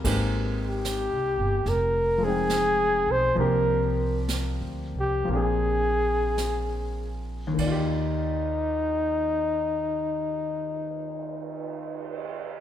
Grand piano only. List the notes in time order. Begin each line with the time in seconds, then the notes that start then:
Already playing: A#4
0.04 G#3 A#3 C4 D#4 G4
2.18 F3 G#3
2.24 C4 D#4
2.29 G5
3.35 F3 A#3 C4
3.39 D4 G4
5.24 F3 A#3
5.31 C4 D4
5.35 G#4
7.47 D#2
7.54 D#3
7.60 D5
7.66 F4
7.72 G4